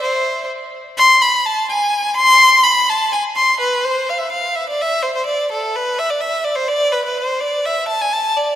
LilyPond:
\new Staff \with { instrumentName = "Violin" } { \time 2/4 \key c \major \tempo 4 = 126 c''4 r4 | c'''8 b''8 a''8 gis''8~ | gis''8 c'''4 b''8 | a''8 gis''8 c'''8 b'8 |
c''8 f''16 e''16 f''8 e''16 d''16 | e''8 c''16 c''16 d''8 a'8 | b'8 e''16 d''16 e''8 d''16 c''16 | d''8 b'16 b'16 c''8 d''8 |
e''8 a''16 gis''16 a''8 d''8 | }